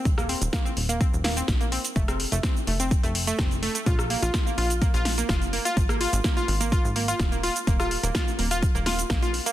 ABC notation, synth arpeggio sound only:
X:1
M:4/4
L:1/16
Q:1/4=126
K:Ebdor
V:1 name="Synth arpeggio sound"
z B, C z B, C z B, C z B, C z B, C z | =A, C z A, C z A, C z A, z A, C z A, A, | F z B, F z B, F z B, F z B, F z B, F | z B, F z B, F z B, F z B, F z B, F z |
B, F z B, F z B, F z B, F z B, F z B, |]